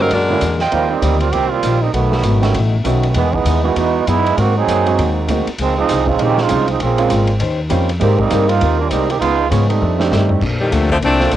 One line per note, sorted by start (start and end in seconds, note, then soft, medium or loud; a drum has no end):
0.00 0.11 G2 medium
0.00 0.10 D3 medium
0.00 0.13 G3 medium
0.00 0.11 G#3 medium
0.00 0.11 A#3 medium
0.00 0.13 C4 medium
0.00 0.11 C#4 medium
0.00 0.13 D#4 medium
0.00 0.11 F#4 medium
0.00 0.13 A#4 medium
0.11 0.41 F#2 medium
0.11 0.31 A#2 medium
0.11 0.32 F#3 medium
0.11 0.58 G#3 medium
0.11 0.33 G#3 medium
0.11 0.58 D4 medium
0.11 0.33 D4 medium
0.11 0.58 F#4 medium
0.11 0.59 A#4 medium
0.11 ride medium
0.29 0.41 D3 medium
0.29 0.41 G#3 medium
0.29 0.41 A#3 medium
0.29 0.41 C#4 medium
0.29 0.42 E4 medium
0.41 0.72 E2 medium
0.41 0.62 A#2 medium
0.41 0.62 F#3 medium
0.41 0.63 G#3 medium
0.41 0.63 D4 medium
0.41 hi-hat pedal medium
0.41 ride medium
0.59 1.01 F4 medium
0.59 1.01 C5 medium
0.59 1.01 D#5 medium
0.59 1.01 G5 loud
0.59 snare soft
0.72 1.02 D#2 medium
0.72 0.89 D#3 medium
0.72 0.92 D#3 soft
0.72 0.89 F3 medium
0.72 0.89 G3 medium
0.72 0.88 G3 medium
0.72 0.92 G3 soft
0.72 0.89 A#3 medium
0.72 0.89 A#3 soft
0.72 0.88 C4 medium
0.72 0.90 C4 medium
0.72 0.93 C4 soft
0.72 0.90 F4 medium
0.72 0.93 F4 soft
0.72 ride medium
0.89 1.18 G3 medium
0.89 1.18 A#3 medium
0.89 1.18 C4 medium
0.89 1.21 D#4 medium
1.01 1.32 D2 medium
1.01 1.19 D#3 soft
1.01 1.23 D#3 medium
1.01 1.19 G3 medium
1.01 1.23 G3 medium
1.01 1.19 A#3 soft
1.01 1.19 C4 soft
1.01 1.23 C4 medium
1.01 1.24 F4 medium
1.01 1.20 G4 medium
1.01 hi-hat pedal medium
1.01 ride medium
1.19 1.32 G3 medium
1.19 1.30 A#3 medium
1.19 1.30 C4 medium
1.19 1.33 F4 medium
1.19 ride soft
1.31 1.62 C2 medium
1.31 1.53 D#3 medium
1.31 1.51 F3 medium
1.31 1.53 G3 medium
1.31 1.49 A#3 medium
1.31 1.49 C4 medium
1.31 1.51 G4 loud
1.31 ride medium
1.35 1.54 C4 medium
1.35 1.54 F4 medium
1.50 1.79 G3 medium
1.50 1.79 A#3 medium
1.50 1.80 C4 medium
1.50 1.81 F4 loud
1.63 1.92 A#1 medium
1.63 1.83 D#3 medium
1.63 1.83 G3 medium
1.63 1.84 C4 medium
1.63 1.84 F4 medium
1.63 hi-hat pedal medium
1.63 ride medium
1.80 1.93 G3 medium
1.80 1.93 A#3 medium
1.80 1.94 C4 medium
1.80 1.93 D#4 medium
1.92 2.22 B1 medium
1.92 2.14 B2 medium
1.92 2.50 D#3 medium
1.92 2.50 F#3 medium
1.92 2.14 F#3 soft
1.92 2.50 A3 medium
1.92 2.14 A3 soft
1.92 2.50 B3 medium
1.92 ride medium
1.97 2.15 D#4 soft
2.12 snare medium
2.23 2.53 G#1 medium
2.23 2.44 B2 medium
2.23 2.45 F#3 medium
2.23 2.45 A3 medium
2.23 2.45 D#4 medium
2.23 hi-hat pedal medium
2.23 ride medium
2.42 2.53 D#3 medium
2.42 2.53 A3 medium
2.42 2.53 B3 medium
2.42 2.54 C#4 medium
2.42 2.54 F#4 medium
2.42 snare soft
2.42 ride soft
2.54 2.83 A1 medium
2.54 2.74 B2 medium
2.54 2.75 F#3 medium
2.54 2.75 A3 medium
2.54 2.76 D#4 medium
2.54 ride medium
2.84 3.14 B1 medium
2.84 3.04 B2 medium
2.84 3.15 D#3 medium
2.84 3.04 F#3 medium
2.84 3.16 A3 medium
2.84 3.05 A3 medium
2.84 3.16 B3 soft
2.84 3.16 C#4 medium
2.84 3.05 D#4 medium
2.84 3.16 F#4 medium
2.84 hi-hat pedal medium
2.84 ride medium
3.03 ride soft
3.14 3.44 E2 medium
3.14 3.32 D#3 medium
3.14 3.32 E3 medium
3.14 3.35 E3 soft
3.14 3.31 G#3 medium
3.14 3.35 G#3 soft
3.14 3.31 B3 loud
3.14 3.36 B3 medium
3.14 3.36 D#4 soft
3.14 ride medium
3.32 3.64 E3 medium
3.32 3.62 G#3 medium
3.32 3.62 B3 medium
3.32 3.64 D#4 loud
3.32 kick medium
3.45 3.75 D#2 medium
3.45 3.65 E3 medium
3.45 3.66 G#3 medium
3.45 3.66 B3 medium
3.45 3.66 D#4 medium
3.45 hi-hat pedal medium
3.45 ride medium
3.63 3.75 D#3 medium
3.63 4.04 E3 medium
3.63 4.04 G#3 medium
3.63 3.75 G#3 medium
3.63 3.75 B3 medium
3.63 4.04 B3 medium
3.63 4.04 D#4 medium
3.63 3.75 E4 medium
3.63 4.05 F#4 medium
3.76 4.05 E2 medium
3.76 3.96 E3 medium
3.76 4.06 E3 medium
3.76 3.96 G#3 medium
3.76 4.05 B3 medium
3.76 3.97 B3 medium
3.76 4.05 D#4 medium
3.76 3.97 D#4 medium
3.76 4.06 F#4 medium
3.76 ride medium
4.06 4.36 F#2 medium
4.06 4.26 E3 medium
4.06 4.37 G#3 medium
4.06 4.26 G#3 medium
4.06 4.37 B3 medium
4.06 4.27 B3 medium
4.06 4.37 D#4 medium
4.06 4.27 D#4 medium
4.06 4.37 E4 loud
4.06 hi-hat pedal medium
4.06 ride medium
4.26 ride soft
4.37 4.66 G#2 medium
4.37 4.57 G#2 soft
4.37 4.56 D#3 medium
4.37 4.58 F#3 soft
4.37 4.56 A#3 loud
4.37 4.58 A#3 medium
4.37 4.55 C4 medium
4.37 4.58 C4 medium
4.37 4.56 F#4 loud
4.37 ride medium
4.57 5.13 F#3 medium
4.57 5.13 C4 medium
4.57 5.13 D#4 loud
4.57 5.13 G#4 loud
4.67 4.97 F#2 medium
4.67 4.87 G#2 medium
4.67 4.88 F#3 medium
4.67 4.88 A#3 medium
4.67 4.88 C4 medium
4.67 hi-hat pedal medium
4.67 ride medium
4.86 5.26 G#3 medium
4.86 5.26 A#3 medium
4.86 5.26 C4 medium
4.86 5.26 D#4 medium
4.86 5.27 F#4 medium
4.86 ride soft
4.98 5.27 D#2 medium
4.98 5.17 G#2 medium
4.98 5.18 F#3 medium
4.98 5.18 A#3 medium
4.98 5.19 C4 medium
4.98 ride medium
5.27 5.45 D2 medium
5.27 5.48 G#2 medium
5.27 5.48 F#3 medium
5.27 5.44 G#3 soft
5.27 5.45 A#3 medium
5.27 5.48 A#3 medium
5.27 5.45 C4 medium
5.27 5.49 C4 medium
5.27 5.45 D#4 soft
5.27 5.46 F#4 medium
5.27 hi-hat pedal medium
5.27 ride medium
5.46 muted upright bass stroke soft
5.46 ride soft
5.58 5.88 C#2 medium
5.58 5.77 C#3 soft
5.58 5.76 D#3 medium
5.58 5.78 F3 soft
5.58 5.76 F3 medium
5.58 5.76 G#3 medium
5.58 5.79 C4 soft
5.58 5.76 C4 medium
5.58 5.79 D#4 medium
5.58 ride medium
5.78 6.05 F3 medium
5.78 6.05 G#3 medium
5.78 6.05 C4 medium
5.78 6.05 D#4 loud
5.89 6.18 C2 medium
5.89 6.08 C#3 medium
5.89 6.08 F3 medium
5.89 6.09 C4 medium
5.89 6.09 D#4 medium
5.89 snare soft
5.89 hi-hat pedal medium
5.89 ride medium
6.06 6.46 G#3 medium
6.06 6.20 G#3 medium
6.06 6.46 C4 medium
6.06 6.19 C4 medium
6.06 6.47 C#4 medium
6.06 6.47 D#4 medium
6.06 6.20 D#4 medium
6.06 6.47 F4 medium
6.06 6.20 F4 medium
6.06 kick medium
6.18 6.48 A#1 medium
6.18 6.38 C#3 soft
6.18 6.38 D#3 loud
6.18 6.39 F3 medium
6.18 6.38 G#3 medium
6.18 6.38 C4 medium
6.18 6.39 C4 medium
6.18 6.38 G4 loud
6.18 ride medium
6.22 6.40 D#4 medium
6.38 6.68 G#3 medium
6.38 6.68 C4 medium
6.38 6.68 D#4 medium
6.38 6.69 F4 loud
6.38 snare soft
6.49 6.79 C2 medium
6.49 6.68 C#3 medium
6.49 6.69 F3 medium
6.49 6.65 G#3 medium
6.49 6.65 C4 medium
6.49 6.69 C4 medium
6.49 6.66 C#4 soft
6.49 6.66 D#4 medium
6.49 6.69 D#4 medium
6.49 6.66 F4 medium
6.49 hi-hat pedal medium
6.49 ride medium
6.68 6.80 F3 medium
6.68 6.80 G#3 medium
6.68 6.79 C4 medium
6.68 6.80 D#4 medium
6.68 ride soft
6.79 7.09 A#1 medium
6.79 6.98 A#2 soft
6.79 7.37 F3 medium
6.79 6.99 G#3 soft
6.79 7.37 G#3 medium
6.79 7.37 A#3 medium
6.79 7.37 C4 medium
6.79 6.99 C#4 soft
6.79 7.00 F4 soft
6.79 ride medium
6.97 7.08 G#3 medium
6.97 7.08 A#3 medium
6.97 7.09 C4 medium
6.97 7.09 C#4 medium
6.97 7.09 F4 medium
6.97 ride medium
7.09 7.39 G#1 medium
7.09 7.29 A#2 medium
7.09 7.29 G#3 medium
7.09 7.30 C#4 medium
7.09 7.30 F4 medium
7.09 hi-hat pedal medium
7.09 ride medium
7.27 ride soft
7.39 7.70 D#2 medium
7.39 7.59 D#3 medium
7.39 7.59 C#4 medium
7.39 7.60 G4 medium
7.39 7.60 C5 medium
7.39 ride medium
7.69 8.00 F2 medium
7.69 7.89 D#3 medium
7.69 7.86 G3 medium
7.69 7.86 A#3 medium
7.69 7.87 C4 medium
7.69 7.89 C#4 medium
7.69 7.87 C#4 medium
7.69 7.87 F4 medium
7.69 7.89 G4 medium
7.69 7.90 C5 medium
7.69 hi-hat pedal soft
7.69 ride medium
7.89 ride medium
7.99 8.30 G#2 medium
7.99 8.17 D#3 medium
7.99 8.16 G3 medium
7.99 8.19 G#3 medium
7.99 8.16 G#3 medium
7.99 8.17 A#3 medium
7.99 8.16 A#3 medium
7.99 8.17 C4 medium
7.99 8.20 C4 medium
7.99 8.17 C4 medium
7.99 8.17 D#4 medium
7.99 8.17 G4 medium
7.99 8.20 G4 medium
7.99 8.21 A#4 medium
7.99 ride medium
8.17 8.48 G3 medium
8.17 8.46 A#3 medium
8.17 8.47 C4 medium
8.17 8.46 D#4 loud
8.17 kick medium
8.30 8.60 G2 loud
8.30 8.46 G#3 medium
8.30 8.50 G#3 medium
8.30 8.47 A#3 soft
8.30 8.47 C4 medium
8.30 8.50 C4 medium
8.30 8.47 D#4 soft
8.30 8.47 G4 medium
8.30 8.51 G4 medium
8.30 8.51 A#4 medium
8.30 hi-hat pedal medium
8.30 ride medium
8.47 8.78 A#3 medium
8.47 8.80 C4 medium
8.47 8.80 D#4 medium
8.47 8.78 F4 loud
8.47 ride soft
8.60 8.90 D#2 medium
8.60 8.80 G#3 medium
8.60 8.80 C4 medium
8.60 8.81 G4 medium
8.60 8.81 A#4 medium
8.60 ride medium
8.79 8.88 G3 medium
8.79 8.88 A#3 medium
8.79 8.89 D4 medium
8.79 8.89 F4 medium
8.89 9.20 C2 medium
8.89 9.10 G3 medium
8.89 9.10 G#3 medium
8.89 9.08 A#3 medium
8.89 9.07 C4 medium
8.89 9.10 C4 medium
8.89 9.10 D#4 medium
8.89 9.11 G4 medium
8.89 9.11 A#4 medium
8.89 hi-hat pedal medium
8.89 ride medium
9.08 9.20 D#3 medium
9.08 9.20 A#3 medium
9.08 9.20 C4 medium
9.08 9.20 G4 medium
9.08 ride soft
9.19 9.50 C#2 medium
9.19 9.40 C#3 soft
9.19 9.41 F3 soft
9.19 9.48 G#3 loud
9.19 9.48 B3 medium
9.19 9.41 B3 soft
9.19 9.48 D#4 loud
9.19 9.48 F4 loud
9.19 ride medium
9.23 9.42 D#4 medium
9.49 9.81 G#2 medium
9.49 9.71 C#3 medium
9.49 9.67 F3 medium
9.49 9.71 F3 medium
9.49 9.67 G#3 medium
9.49 9.67 B3 medium
9.49 9.71 B3 medium
9.49 9.67 C#4 medium
9.49 hi-hat pedal medium
9.49 ride medium
9.53 9.71 D#4 medium
9.67 10.08 G3 medium
9.67 10.07 A3 medium
9.67 10.07 C4 medium
9.67 10.07 D#4 medium
9.67 ride soft
9.80 10.00 F2 medium
9.80 10.11 F2 medium
9.80 10.01 D#3 medium
9.80 10.01 A3 medium
9.80 10.02 D4 medium
9.99 10.39 A3 medium
9.99 10.39 C4 medium
9.99 10.39 D4 medium
9.99 10.40 D#4 medium
9.99 10.40 G4 medium
9.99 snare soft
10.11 10.31 F2 medium
10.11 10.41 G2 medium
10.11 10.31 D#3 medium
10.11 10.31 A3 medium
10.11 10.32 D4 medium
10.11 snare medium
10.11 hi-hat pedal medium
10.29 floor tom medium
10.40 10.71 A#1 medium
10.40 10.61 A#3 soft
10.40 10.61 D4 soft
10.40 10.61 A4 soft
10.40 10.62 C5 medium
10.40 kick medium
10.40 crash medium
10.60 10.72 A2 medium
10.60 10.71 C3 medium
10.60 10.71 D#3 medium
10.60 10.71 G3 medium
10.71 11.01 D2 medium
10.71 10.90 C3 medium
10.71 10.90 D3 medium
10.71 10.90 F3 medium
10.71 10.90 A3 medium
10.71 10.91 A#3 medium
10.71 10.92 D4 medium
10.71 10.92 A4 medium
10.71 10.92 C5 medium
10.71 hi-hat pedal medium
10.71 ride medium
10.90 10.96 D3 medium
10.90 10.97 F3 medium
10.90 10.97 A3 medium
10.90 10.97 C4 medium
10.90 kick soft
11.01 11.31 C2 medium
11.01 11.31 F3 medium
11.01 11.31 A3 medium
11.01 11.21 A#3 medium
11.01 11.31 C4 medium
11.01 11.22 D4 soft
11.01 11.32 D4 loud
11.01 11.22 A4 soft
11.01 11.23 C5 medium
11.01 ride medium
11.20 11.31 A#3 medium
11.20 11.31 C4 medium
11.20 11.32 D4 medium
11.20 11.32 F4 medium
11.20 11.32 A4 medium
11.20 snare soft
11.31 11.37 A#1 medium
11.31 11.37 D3 medium
11.31 11.37 A#3 soft
11.31 11.37 D4 medium
11.31 11.37 A4 medium
11.31 11.37 C5 medium
11.31 hi-hat pedal soft
11.31 ride medium